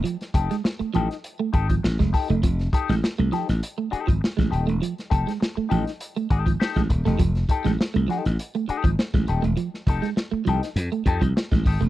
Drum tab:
HH |xxxx-xxxx-xx-xox|xxxx-xxxx-xx-xxx|xxxx--xxxxxx-xxx|xxxx-xxxxxxx-xxx|
SD |-o-oo--o----oo--|-o-oo-oo----oo--|-o-oo--o----oo-o|-o-oo-oo----oo--|
BD |--o-------oo-oo-|o-o--------o-o--|--o-------oo-oo-|o-o--------o-o--|

HH |x-xx--xxxxxx-xox|
SD |-o-oo--o----oo--|
BD |--o-------oo-oo-|